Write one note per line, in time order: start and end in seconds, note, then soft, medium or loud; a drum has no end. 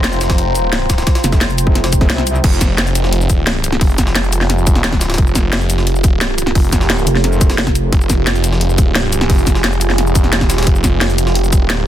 0.00 1.05 F1 loud
0.00 2.40 F4 medium
0.00 2.40 C5 medium
0.00 2.40 G5 medium
0.00 2.42 A#5 loud
0.00 snare loud
0.00 closed hi-hat medium
0.13 closed hi-hat soft
0.13 shaker soft
0.21 snare loud
0.21 closed hi-hat medium
0.21 closed hi-hat loud
0.21 shaker medium
0.30 kick loud
0.30 snare loud
0.30 closed hi-hat medium
0.38 closed hi-hat medium
0.55 closed hi-hat medium
0.55 closed hi-hat loud
0.55 shaker medium
0.72 snare loud
0.72 closed hi-hat medium
0.90 kick medium
0.90 snare loud
0.90 closed hi-hat medium
0.90 closed hi-hat loud
0.90 shaker medium
0.98 snare loud
0.98 closed hi-hat medium
0.98 shaker soft
1.07 kick loud
1.07 snare loud
1.07 closed hi-hat medium
1.15 snare loud
1.15 closed hi-hat medium
1.24 2.08 F1 loud
1.24 snare soft
1.24 closed hi-hat medium
1.24 closed hi-hat loud
1.24 shaker medium
1.32 kick loud
1.32 snare medium
1.32 shaker soft
1.41 snare loud
1.41 closed hi-hat medium
1.50 shaker soft
1.58 closed hi-hat medium
1.58 closed hi-hat loud
1.58 shaker medium
1.67 kick loud
1.75 snare soft
1.75 closed hi-hat medium
1.84 snare loud
1.84 closed hi-hat medium
1.93 kick medium
1.93 closed hi-hat loud
1.93 shaker medium
2.01 kick loud
2.01 snare soft
2.01 closed hi-hat medium
2.10 2.43 C2 loud
2.10 snare loud
2.10 closed hi-hat medium
2.18 snare soft
2.27 closed hi-hat medium
2.27 closed hi-hat loud
2.27 shaker medium
2.35 shaker soft
2.44 3.80 F1 loud
2.44 11.87 F4 medium
2.44 11.87 G4 medium
2.44 5.17 G#4 medium
2.44 kick loud
2.44 closed hi-hat medium
2.44 crash loud
2.52 shaker soft
2.61 kick medium
2.61 snare soft
2.61 closed hi-hat loud
2.61 closed hi-hat medium
2.61 shaker medium
2.78 snare loud
2.78 closed hi-hat medium
2.87 closed hi-hat soft
2.87 shaker soft
2.95 closed hi-hat loud
2.95 closed hi-hat medium
2.95 shaker medium
3.04 snare medium
3.13 closed hi-hat medium
3.21 shaker soft
3.30 kick loud
3.30 closed hi-hat medium
3.30 closed hi-hat loud
3.30 shaker medium
3.47 snare loud
3.47 closed hi-hat medium
3.47 closed hi-hat loud
3.64 closed hi-hat loud
3.64 closed hi-hat medium
3.64 shaker medium
3.73 snare medium
3.81 4.79 F1 loud
3.81 kick loud
3.81 closed hi-hat medium
3.81 open hi-hat medium
3.90 shaker soft
3.98 kick medium
3.98 snare soft
3.98 closed hi-hat medium
3.98 closed hi-hat loud
3.98 shaker medium
4.07 snare medium
4.15 snare loud
4.15 closed hi-hat medium
4.24 shaker soft
4.33 closed hi-hat medium
4.33 shaker medium
4.41 snare soft
4.41 closed hi-hat soft
4.50 snare soft
4.50 closed hi-hat medium
4.58 shaker soft
4.67 kick loud
4.67 closed hi-hat medium
4.67 closed hi-hat loud
4.67 shaker medium
4.75 5.01 D#1 loud
4.75 snare soft
4.75 closed hi-hat soft
4.84 snare loud
4.84 closed hi-hat medium
4.93 kick medium
4.93 snare medium
5.01 5.17 C#1 loud
5.01 snare loud
5.01 closed hi-hat medium
5.01 closed hi-hat loud
5.01 shaker medium
5.10 snare medium
5.10 closed hi-hat medium
5.14 snare medium
5.14 closed hi-hat medium
5.18 6.54 F1 loud
5.18 7.92 A#4 medium
5.18 kick loud
5.18 closed hi-hat medium
5.27 shaker soft
5.35 kick medium
5.35 snare soft
5.35 closed hi-hat medium
5.35 shaker medium
5.53 snare loud
5.53 closed hi-hat medium
5.61 closed hi-hat soft
5.61 shaker soft
5.70 closed hi-hat medium
5.70 shaker medium
5.78 snare medium
5.87 closed hi-hat medium
5.95 shaker soft
6.04 kick loud
6.04 closed hi-hat medium
6.04 shaker medium
6.21 snare loud
6.21 closed hi-hat medium
6.38 closed hi-hat medium
6.38 closed hi-hat loud
6.38 shaker medium
6.47 snare medium
6.55 7.05 F1 loud
6.55 kick loud
6.55 closed hi-hat medium
6.55 open hi-hat medium
6.64 shaker soft
6.72 kick medium
6.72 snare soft
6.72 closed hi-hat medium
6.72 shaker medium
6.81 snare medium
6.90 snare loud
6.90 closed hi-hat medium
6.98 shaker soft
7.07 7.91 F1 loud
7.07 closed hi-hat medium
7.07 shaker medium
7.15 snare soft
7.24 snare soft
7.24 closed hi-hat medium
7.33 shaker soft
7.41 kick loud
7.41 closed hi-hat medium
7.41 shaker medium
7.50 snare loud
7.50 snare soft
7.50 closed hi-hat medium
7.58 snare loud
7.58 closed hi-hat medium
7.67 kick medium
7.67 snare soft
7.67 closed hi-hat medium
7.75 closed hi-hat medium
7.75 shaker medium
7.92 9.28 F1 loud
7.92 10.66 G#4 loud
7.92 kick loud
7.92 closed hi-hat medium
8.01 shaker soft
8.10 kick medium
8.10 snare soft
8.10 closed hi-hat medium
8.10 shaker medium
8.27 snare loud
8.27 closed hi-hat medium
8.35 closed hi-hat soft
8.35 shaker soft
8.44 closed hi-hat medium
8.44 shaker medium
8.52 snare medium
8.61 closed hi-hat medium
8.70 shaker soft
8.78 kick loud
8.78 closed hi-hat medium
8.78 shaker medium
8.95 snare loud
8.95 closed hi-hat medium
9.12 closed hi-hat medium
9.12 shaker medium
9.21 snare medium
9.30 10.26 F1 loud
9.30 kick loud
9.30 closed hi-hat medium
9.30 open hi-hat medium
9.38 shaker soft
9.47 kick medium
9.47 snare soft
9.47 closed hi-hat medium
9.47 shaker medium
9.55 snare medium
9.64 snare loud
9.64 closed hi-hat medium
9.73 shaker soft
9.81 closed hi-hat medium
9.81 shaker medium
9.90 snare soft
9.90 closed hi-hat soft
9.98 snare soft
9.98 closed hi-hat medium
10.07 shaker soft
10.15 kick loud
10.15 closed hi-hat loud
10.15 closed hi-hat medium
10.15 shaker medium
10.24 10.53 E1 loud
10.24 snare soft
10.24 closed hi-hat soft
10.33 snare loud
10.33 closed hi-hat loud
10.33 closed hi-hat medium
10.41 kick medium
10.41 snare medium
10.41 snare soft
10.50 10.65 D#1 loud
10.50 snare loud
10.50 closed hi-hat medium
10.50 shaker medium
10.58 snare medium
10.58 closed hi-hat medium
10.63 snare medium
10.63 closed hi-hat medium
10.67 11.65 F1 loud
10.67 11.87 A#4 loud
10.67 kick loud
10.67 closed hi-hat medium
10.75 shaker soft
10.84 kick medium
10.84 snare soft
10.84 closed hi-hat medium
10.84 shaker medium
11.01 snare loud
11.01 closed hi-hat medium
11.10 closed hi-hat soft
11.10 shaker soft
11.18 closed hi-hat medium
11.18 shaker medium
11.27 snare medium
11.35 closed hi-hat medium
11.44 shaker soft
11.53 kick loud
11.53 closed hi-hat medium
11.53 closed hi-hat loud
11.53 shaker medium
11.65 11.87 D#1 loud
11.70 snare loud
11.70 closed hi-hat loud
11.70 closed hi-hat medium